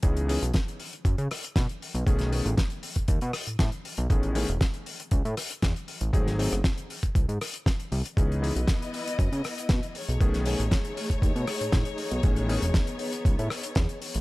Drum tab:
HH |xxoxxxoxxxoxxxox|xxoxxxoxxxoxxxox|xxoxxxoxxxoxxxox|xxoxxxoxxxoxxxox|
SD |----o-----r-o---|-o--o-----r-o---|----o-----r-o---|-o-ro-----r-o---|
BD |o---o---o---o---|o---o--oo---o---|o---o---o---o---|o---o--oo---o---|

HH |xxoxxxoxxxoxxxox|xxoxxxoxxxoxxxox|xxoxxxoxxxoxxxox|
SD |----o-----r-o---|-o--o-----r-o---|----o-----r-o---|
BD |o---o---o---o---|o---o--oo---o---|o---o---o---o---|